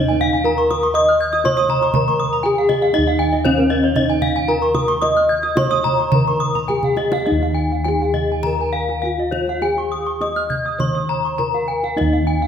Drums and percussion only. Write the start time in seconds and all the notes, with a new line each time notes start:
0.21 kendang low
0.71 kendang high, kendang low
1.33 kendang slap
1.46 kendang slap, kendang high, kendang low
1.58 kendang slap
1.69 kendang slap, kendang low
1.82 kendang slap
1.94 kendang low
2.69 kendang high, kendang low
2.95 kendang high
3.33 kendang slap
3.45 kendang slap, kendang high, kendang low
3.58 kendang slap
3.70 kendang slap
3.83 kendang slap
3.96 kendang low
4.22 kendang low
4.74 kendang high, kendang low
5.02 kendang high
5.16 kendang slap
5.43 kendang slap
5.57 kendang slap, kendang high, kendang low
5.71 kendang slap
5.85 kendang slap, kendang low
5.98 kendang slap
6.12 kendang low
6.55 kendang low
6.69 kendang low
6.83 kendang low
6.97 kendang high
7.12 kendang high
7.27 kendang high
7.41 kendang slap
7.85 kendang high
8.00 kendang slap
8.14 kendang low
8.43 kendang low
8.58 kendang slap
8.89 kendang slap
9.18 kendang slap
9.32 kendang high, kendang low
9.47 kendang slap
9.62 kendang high
9.77 kendang slap
10.21 kendang high
10.36 kendang slap
10.50 kendang low
10.80 kendang high, kendang low
11.39 kendang low
11.54 kendang slap
11.83 kendang slap
11.98 kendang high
12.13 kendang slap